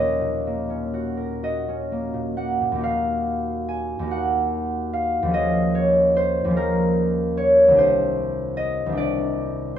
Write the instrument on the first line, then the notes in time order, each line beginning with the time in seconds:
harp
Already playing: D#2 A#3 C#4 A#4 C#5 D#5
0.21 A#2
0.47 A#3
0.69 C#4
0.94 F#4
1.17 A#4
1.43 F#4 D#5
1.68 C#4
1.92 A#3
2.14 A#2
2.37 A#3 F#5
2.62 A#2
2.72 D#2 A#3
2.78 D#4 F#4
2.84 F5
3.69 G#5
3.99 D#2 A#3
4.05 D#4 F#4
4.11 F#5
4.93 F5
5.23 D#2 F3
5.28 C#4 G#4
5.34 D#5
5.75 C#5
6.16 C5
6.45 D#2 F3
6.51 C#4 G#4
6.57 A#4
7.37 C#5
7.68 C2 D#3
7.72 D4 G4
7.78 C5
8.57 D#5
8.86 C2 D#3
8.92 D4 G4
8.97 D5